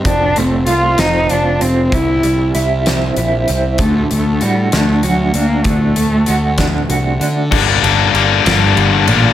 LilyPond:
<<
  \new Staff \with { instrumentName = "Clean electric guitar" } { \time 6/8 \key g \minor \tempo 4. = 64 f,8 a8 f'8 c'8 f'8 c'8 | c8 g8 e'8 c'8 e'8 c'8 | d8 a8 fis'8 d'8 fis'8 d'8 | d8 a8 fis'8 d'8 fis'8 d'8 |
r2. | }
  \new Staff \with { instrumentName = "Cello" } { \time 6/8 \key g \minor d'8 c'8 f'8 ees'8 d'8 c'8 | e'4 r2 | a8 a8 g8 a8 fis8 bes8 | a2 r4 |
r4. g,4 bes,8 | }
  \new Staff \with { instrumentName = "Distorted electric guitar" } { \clef bass \time 6/8 \key g \minor r2. | r2. | r2. | r2. |
<g, d g bes d'>8 <g bes d'>8 <d g bes d'>8 <g, d g bes d'>4 <g bes d'>8 | }
  \new Staff \with { instrumentName = "Picked electric bass" } { \clef bass \time 6/8 \key g \minor f,,8 f,,8 c,8 f,,8 f,,8 f,,8 | c,8 c,8 c,4 bes,,8 c,8 | d,8 d,8 a,8 d,8 d,8 d,8 | d,8 d,8 d,4 c,8 d8 |
g,,8 g,,8 g,,8 g,,8 g,,8 a,,8 | }
  \new DrumStaff \with { instrumentName = "Drums" } \drummode { \time 6/8 <hh bd>8 hh8 hh8 <hh sn>8 hh8 hh8 | <hh bd>8 hh8 hh8 <hh sn>8 hh8 hh8 | <hh bd>8 hh8 hh8 <hh sn>8 hh8 hh8 | <hh bd>8 hh8 hh8 <hh bd sn>8 hh8 hh8 |
<cymc bd>8 cymr8 cymr8 <cymr sn>8 cymr8 cymr8 | }
>>